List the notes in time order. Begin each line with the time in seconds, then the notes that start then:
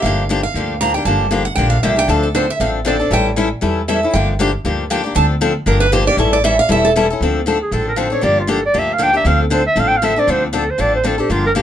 0.02 G1 D3 F3 A#3 D4 G4 F5
0.29 D3 F3 A#3 D4 G4
0.43 F5
0.54 D2 D3 F3 A#3 D4 G4
0.81 D3 F3 A#3 D4 G4 A#5
0.94 A#3 D4 G4 G5
1.05 G1 D3 F3 A#3 D4 G4 A5
1.31 D3 F3 A#3 D4 G4
1.45 F#5
1.55 A#1 D3 F3 A#3 D4 G4 G5
1.70 F5
1.83 C2 D3 F3 A#3 D4 G4 E5
1.96 A#3 D4 G4 G5
2.08 D2 D3 F3 C4 D4 A4 F5
2.23 A4
2.35 D3 F3 C4 D4 A4 C5
2.50 E5
2.60 A1 D3 F3 C4 D4 A4 F5
2.85 D3 F3 C4 D4 A4 D5
2.99 C4 D4 A4
3.11 A1 E3 G3 C#4 E4 A4 G5
3.36 E3 G3 C#4 E4 A4
3.61 E2 E3 G3 C#4 E4 A4
3.88 E3 G3 C#4 E4 A4 E5
4.03 C#4 E4 A4
4.14 G1 D3 F3 A#3 D4 G4 G5
4.39 D3 F3 A#3 D4 G4
4.65 D2 D3 F3 A#3 D4 G4
4.90 D3 F3 A#3 D4 G4 G5
5.04 A#3 D4 G4
5.15 D2 D3 F3 C4 D4 A4 A5
5.41 D3 F3 C4 D4 A4
5.66 G1 D3 F3 A#3 D4 G4 A#4
5.80 B4
5.92 D3 F3 A#3 D4 G4 C5
6.07 A#3 D4 G4 D5
6.17 A1 E3 G3 C#4 E4 A4 C#5
6.33 D5
6.44 E3 G3 C#4 E4 A4 E5
6.59 F5
6.69 E1 E3 G3 C#4 E4 A4 E5
6.85 A4
6.96 E3 G3 C#4 E4 A4
7.10 C#4 E4 A4
7.21 D2 D3 F3 C4 D4 A4
7.46 D3 F3 C4 D4 A4
7.62 G#4
7.71 A1 D3 F3 C4 D4 A4
7.88 A#4
7.96 D3 F3 C4 D4 A4 C5
8.10 C4 D4 A4 C#5
8.21 G1 D3 F3 A#3 D4 G4 D5
8.40 F4
8.47 D3 F3 A#3 D4 G4 A4
8.66 D5
8.74 D2 D3 F3 A#3 D4 G4
8.79 E5
8.93 F5
8.98 D3 F3 A#3 D4 G4
9.03 G5
9.13 A#3 D4 G4 E5
9.25 D2 D3 F3 C4 D4 A4 F5
9.42 A4
9.50 D3 F3 C4 D4 A4 C5
9.67 E5
9.76 A1 D3 F3 C4 D4 A4 F5
9.88 G5
9.97 F5
10.02 D3 F3 C4 D4 A4 E5
10.16 C4 D4 A4 D5
10.27 D2 D3 F3 C4 D4 A4 C5
10.46 E4
10.53 D3 F3 C4 D4 A4
10.70 C5
10.78 A1 D3 F3 C4 D4 A4 D5
10.95 C5
11.04 D3 F3 C4 D4 A4
11.18 C4 D4 G4 A4
11.29 G1 D3 F3 A#3 D4 F4 G4
11.46 A#4
11.55 D3 F3 A#3 D4 G4